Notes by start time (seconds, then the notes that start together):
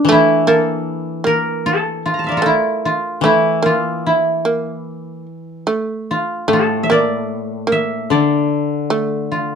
Already playing: D4
0.05 E3
0.09 A3 E4
0.47 A#3 A4
1.24 A#3 A#4
1.66 A4
2.06 F4
2.14 A#5
2.19 A5
2.24 E5 F5
2.29 A#4 D5
2.37 F4 A4
2.42 A3 E4
2.85 F4
3.21 E3 A3
3.25 E4
3.63 A#3 F4
4.06 E4
4.45 A#3
5.67 A3
6.11 F4
6.48 A2 A3
6.53 A4
6.83 E5
6.90 A#3 D5
7.67 A#3
7.72 E5
8.10 D3 D5
8.90 A3
9.32 F4